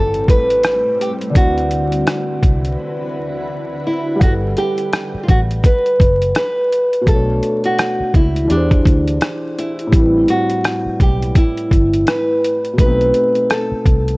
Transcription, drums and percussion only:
0.14 closed hi-hat soft
0.28 kick medium
0.28 closed hi-hat medium
0.50 closed hi-hat soft
0.63 cross-stick loud
0.63 closed hi-hat medium
1.01 closed hi-hat medium
1.21 closed hi-hat soft
1.35 kick loud
1.35 closed hi-hat medium
1.58 closed hi-hat soft
1.71 closed hi-hat medium
1.92 closed hi-hat soft
2.07 cross-stick loud
2.07 closed hi-hat medium
2.43 kick medium
2.43 closed hi-hat medium
2.65 closed hi-hat soft
4.21 kick loud
4.21 closed hi-hat medium
4.57 closed hi-hat medium
4.78 closed hi-hat soft
4.93 cross-stick loud
4.93 closed hi-hat medium
5.28 kick medium
5.28 closed hi-hat soft
5.51 closed hi-hat soft
5.64 kick medium
5.64 closed hi-hat medium
5.86 closed hi-hat soft
6.00 kick medium
6.00 closed hi-hat medium
6.22 closed hi-hat soft
6.35 cross-stick loud
6.35 closed hi-hat medium
6.73 closed hi-hat medium
6.93 closed hi-hat soft
7.07 kick loud
7.07 closed hi-hat medium
7.43 closed hi-hat medium
7.64 closed hi-hat soft
7.79 cross-stick loud
7.79 closed hi-hat medium
8.14 kick medium
8.14 closed hi-hat soft
8.36 closed hi-hat soft
8.50 closed hi-hat medium
8.71 kick medium
8.71 closed hi-hat soft
8.85 kick medium
8.85 closed hi-hat medium
9.07 closed hi-hat soft
9.21 cross-stick loud
9.21 closed hi-hat medium
9.59 closed hi-hat medium
9.79 closed hi-hat soft
9.92 kick loud
9.92 closed hi-hat medium
10.28 closed hi-hat medium
10.50 closed hi-hat soft
10.64 cross-stick loud
10.64 closed hi-hat medium
11.00 kick medium
11.00 closed hi-hat soft
11.22 closed hi-hat soft
11.35 kick medium
11.35 closed hi-hat medium
11.57 closed hi-hat soft
11.71 kick medium
11.71 closed hi-hat medium
11.94 closed hi-hat soft
12.07 cross-stick loud
12.07 closed hi-hat medium
12.44 closed hi-hat medium
12.65 closed hi-hat soft
12.78 kick loud
12.78 closed hi-hat medium
13.01 closed hi-hat soft
13.14 closed hi-hat medium
13.35 closed hi-hat soft
13.50 cross-stick loud
13.50 closed hi-hat medium
13.86 kick medium
13.86 closed hi-hat soft
14.08 closed hi-hat soft

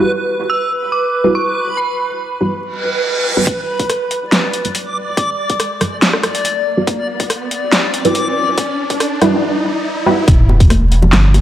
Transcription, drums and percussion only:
3.47 kick loud
3.47 closed hi-hat medium
3.79 kick medium
3.79 closed hi-hat medium
3.89 cross-stick medium
3.89 closed hi-hat medium
4.11 closed hi-hat medium
4.32 snare loud
4.32 closed hi-hat medium
4.54 closed hi-hat medium
4.65 closed hi-hat medium
4.75 closed hi-hat medium
5.17 kick loud
5.17 closed hi-hat medium
5.50 kick medium
5.50 closed hi-hat soft
5.60 cross-stick medium
5.60 closed hi-hat medium
5.81 cross-stick medium
5.81 closed hi-hat soft
6.02 snare loud
6.02 closed hi-hat medium
6.13 cross-stick medium
6.23 cross-stick medium
6.23 closed hi-hat medium
6.35 closed hi-hat medium
6.45 closed hi-hat medium
6.87 kick loud
6.87 closed hi-hat medium
7.20 kick medium
7.20 closed hi-hat soft
7.30 cross-stick medium
7.30 closed hi-hat medium
7.51 closed hi-hat soft
7.72 snare loud
7.72 closed hi-hat medium
7.94 closed hi-hat medium
8.05 closed hi-hat medium
8.15 closed hi-hat medium
8.58 kick loud
8.58 closed hi-hat medium
8.90 kick medium
8.90 closed hi-hat soft
9.00 cross-stick medium
9.00 closed hi-hat medium
9.21 cross-stick medium
9.21 closed hi-hat soft
10.28 kick loud
10.28 closed hi-hat medium
10.49 high bongo medium
10.60 kick medium
10.60 closed hi-hat medium
10.70 cross-stick medium
10.70 closed hi-hat medium
10.70 high conga medium
10.92 closed hi-hat medium
11.02 high bongo medium
11.02 low conga medium
11.13 snare loud
11.13 clap medium
11.13 closed hi-hat medium
11.34 closed hi-hat medium
11.34 high bongo medium
11.34 high conga medium

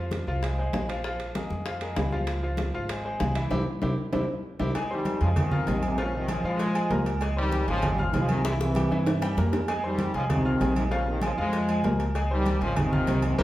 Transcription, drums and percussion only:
0.11 high bongo medium
0.11 high conga medium
0.11 high timbale medium
0.11 low timbale medium
0.27 high conga soft
0.43 high bongo medium
0.43 high conga soft
0.43 high timbale medium
0.58 high conga soft
0.73 high bongo medium
0.73 low bongo medium
0.73 high conga medium
0.73 high timbale medium
0.73 low timbale medium
0.89 high conga soft
0.89 high timbale medium
1.04 high bongo medium
1.04 high conga soft
1.20 high bongo soft
1.20 high conga soft
1.20 high timbale medium
1.35 high bongo medium
1.35 high conga medium
1.35 high timbale medium
1.35 low timbale medium
1.50 high bongo soft
1.50 high conga medium
1.66 high bongo medium
1.66 high conga soft
1.66 high timbale medium
1.81 high conga soft
1.81 high timbale medium
1.96 high bongo medium
1.96 low bongo medium
1.96 high conga medium
1.96 high timbale medium
1.96 low timbale medium
2.12 high bongo soft
2.12 high conga medium
2.27 high bongo medium
2.27 high timbale medium
2.42 high conga soft
2.57 high bongo medium
2.57 high conga medium
2.57 high timbale medium
2.57 low timbale medium
2.74 high conga soft
2.89 high bongo medium
2.89 high conga soft
2.89 high timbale loud
3.04 high conga soft
3.20 high bongo medium
3.20 low bongo medium
3.20 high conga medium
3.20 high timbale medium
3.20 low timbale medium
3.35 high conga soft
3.35 high timbale medium
3.51 low bongo loud
3.51 high conga loud
3.51 high timbale loud
3.82 low bongo loud
3.82 high conga loud
3.82 high timbale medium
4.13 low bongo loud
4.13 high conga loud
4.13 high timbale loud
4.59 low bongo loud
4.59 high conga medium
4.59 high timbale medium
4.75 cowbell loud
4.75 high conga soft
4.75 low agogo loud
4.90 high conga soft
5.05 cowbell medium
5.05 high conga loud
5.05 low timbale medium
5.05 low agogo medium
5.21 cowbell medium
5.21 high conga soft
5.36 cowbell loud
5.36 high conga soft
5.36 low conga medium
5.36 low agogo loud
5.51 high conga soft
5.51 low conga medium
5.67 cowbell medium
5.67 high conga medium
5.67 low timbale medium
5.67 low agogo medium
5.83 high conga medium
5.83 low agogo loud
5.98 cowbell loud
5.98 high conga soft
6.13 high conga soft
6.28 cowbell medium
6.28 high conga loud
6.28 low timbale medium
6.28 low agogo loud
6.44 high conga soft
6.59 cowbell loud
6.59 high conga soft
6.59 low agogo medium
6.75 high conga soft
6.75 low agogo loud
6.91 cowbell medium
6.91 high conga medium
6.91 low timbale medium
7.06 cowbell medium
7.06 high conga soft
7.06 low agogo medium
7.21 cowbell loud
7.21 high conga soft
7.21 low agogo loud
7.37 high conga soft
7.51 cowbell medium
7.51 high conga loud
7.51 low timbale medium
7.51 low agogo medium
7.68 cowbell medium
7.68 high conga soft
7.82 cowbell loud
7.82 high conga soft
7.82 low conga medium
7.82 low agogo loud
7.98 high conga soft
7.98 low conga medium
8.13 cowbell medium
8.13 high conga medium
8.13 low timbale medium
8.13 low agogo medium
8.28 high conga medium
8.28 low agogo loud
8.44 cowbell loud
8.44 high bongo loud
8.44 high conga soft
8.59 high bongo medium
8.59 high conga soft
8.75 cowbell medium
8.75 high conga loud
8.75 low timbale medium
8.75 low agogo loud
8.91 low bongo medium
8.91 high conga soft
9.06 cowbell loud
9.06 low bongo loud
9.06 high conga soft
9.06 high timbale medium
9.06 low agogo medium
9.22 low bongo medium
9.22 low agogo loud
9.37 cowbell medium
9.37 low bongo medium
9.37 high conga medium
9.37 low timbale medium
9.53 cowbell medium
9.53 low bongo loud
9.53 high conga soft
9.53 low timbale medium
9.53 low agogo medium
9.68 cowbell loud
9.68 high conga soft
9.68 low agogo loud
9.83 high conga soft
9.98 cowbell medium
9.98 high conga loud
9.98 low timbale medium
9.98 low agogo medium
10.14 cowbell medium
10.14 high conga soft
10.30 cowbell loud
10.30 high conga soft
10.30 low conga medium
10.30 low agogo loud
10.45 high conga soft
10.60 cowbell medium
10.60 high conga medium
10.60 low timbale medium
10.60 low agogo medium
10.76 high conga medium
10.76 low agogo loud
10.92 cowbell loud
10.92 high conga soft
11.07 high conga soft
11.21 cowbell medium
11.21 high conga loud
11.21 low timbale medium
11.21 low agogo loud
11.37 high conga soft
11.52 cowbell loud
11.52 high conga soft
11.52 low agogo medium
11.68 high conga soft
11.68 low agogo medium
11.84 cowbell medium
11.84 high conga medium
11.84 low timbale medium
11.99 cowbell medium
11.99 high conga soft
11.99 low agogo medium
12.15 cowbell loud
12.15 low agogo loud
12.30 high conga soft
12.46 cowbell medium
12.46 high conga loud
12.46 low timbale medium
12.46 low agogo medium
12.61 cowbell medium
12.61 high conga soft
12.76 cowbell loud
12.76 high conga soft
12.76 low conga loud
12.76 low agogo loud
12.93 high conga soft
12.93 low conga medium
13.07 cowbell medium
13.07 high conga medium
13.07 low timbale medium
13.07 low agogo medium
13.22 high conga medium
13.22 low agogo loud
13.39 cowbell loud
13.39 high conga loud
13.39 high timbale medium

